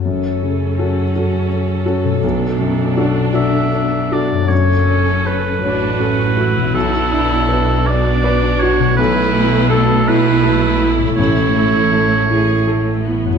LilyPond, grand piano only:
\new Staff \with { instrumentName = "Grand piano" } { \time 6/8 \key fis \minor \tempo 4. = 54 fis,8 cis8 <cis' fis' a'>8 <cis' fis' a'>8 cis'8 <cis' fis' a'>8 | b,,8 fis,8 <d' fis' a'>8 <d' fis' a'>8 d'8 <d' fis' a'>8 | fis,8 cis'8 a'8 cis''8 a'8 fis'8 | b,,8 d'8 b'8 d''8 b'8 fis'8 |
b,,8 a8 a'8 e'8 a'8 e'8 | a,,8 a8 a'8 e'8 a'8 e'8 | }